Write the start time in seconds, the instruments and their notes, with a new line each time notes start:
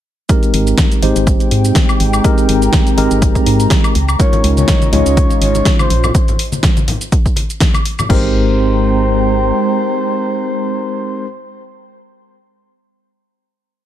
0.29 tine electric piano G#3 C4 D#4 G4 A#4, ambient pad C4, kick, closed hi-hat, shaker
0.43 closed hi-hat, shaker
0.54 fm bass G#1, open hi-hat
0.64 ambient pad G5, closed hi-hat, shaker
0.70 ambient pad G#3
0.78 kick, snare, closed hi-hat, shaker
0.92 closed hi-hat, shaker
1.02 fm bass G#1, tine electric piano G#3 C4 D#4 G4 C5, open hi-hat
1.16 fm bass G#1, closed hi-hat, shaker
1.27 kick, closed hi-hat, shaker
1.40 closed hi-hat, shaker
1.51 fm bass G#2, open hi-hat
1.65 closed hi-hat, shaker
1.70 ambient pad A#5
1.75 kick, snare, closed hi-hat, shaker
1.89 high woodblock, shaker
2.00 fm bass G#1, open hi-hat
2.13 high woodblock, shaker
2.24 tine electric piano G#3 C4 D#4 G4 A#4, kick, closed hi-hat, shaker
2.38 closed hi-hat, shaker
2.49 fm bass G#1, open hi-hat
2.62 closed hi-hat, shaker
2.73 kick, snare, closed hi-hat, shaker
2.87 closed hi-hat, shaker
2.97 fm bass G#1, tine electric piano G#3 C4 D#4 G4 A#4, open hi-hat
3.11 fm bass G#1, closed hi-hat, shaker
3.22 kick, closed hi-hat, shaker
3.35 kick, closed hi-hat, shaker
3.46 fm bass G#2, open hi-hat
3.60 closed hi-hat, shaker
3.70 kick, snare, closed hi-hat, shaker
3.84 closed hi-hat, high woodblock, shaker
3.95 fm bass C#2, ambient pad C#4, open hi-hat
4.09 high woodblock, shaker
4.19 tine electric piano G#3 C#4 D#4 F4 A#4, soft synth lead C#5, kick, closed hi-hat, shaker
4.33 ambient pad D#5, closed hi-hat, muted conga, low conga, shaker
4.44 fm bass C#2, open hi-hat
4.57 soft synth lead C#5, closed hi-hat, high conga, shaker
4.63 ambient pad F4
4.68 kick, snare, closed hi-hat, shaker
4.82 closed hi-hat, high conga, shaker
4.92 fm bass C#2, tine electric piano G#3 C#4 D#4 F4 C#5, soft synth lead C#5, open hi-hat, muted conga, low conga
5.06 fm bass C#2, closed hi-hat, shaker
5.17 kick, closed hi-hat, shaker
5.30 closed hi-hat, muted conga, shaker
5.42 fm bass G#1, soft synth lead C#5, open hi-hat
5.55 closed hi-hat, muted conga, shaker
5.65 kick, snare, closed hi-hat, shaker
5.79 soft synth lead C5, high conga, high woodblock, shaker
5.90 fm bass A#1, open hi-hat, muted conga
6.04 low conga, high woodblock, shaker
6.14 kick, closed hi-hat, muted conga, shaker
6.28 closed hi-hat, low conga, shaker
6.39 open hi-hat
6.52 closed hi-hat, muted conga, high conga, shaker
6.63 kick, snare, closed hi-hat, shaker
6.77 closed hi-hat, muted conga, high conga, shaker
6.88 open hi-hat, low conga
7.01 closed hi-hat, shaker
7.12 kick, closed hi-hat, muted conga, shaker
7.26 kick, closed hi-hat, shaker
7.36 open hi-hat, muted conga
7.50 closed hi-hat, shaker
7.60 kick, snare, closed hi-hat, shaker
7.74 closed hi-hat, muted conga, high conga, high woodblock, shaker
7.85 open hi-hat
7.99 muted conga, low conga, high woodblock, shaker
8.09 fm bass G#1, tine electric piano G#3 C4 D#4 G4 A#4, ambient pad C4, soft synth lead C5, kick, crash
8.18 ambient pad G#3
8.25 ambient pad G5
8.32 ambient pad A#5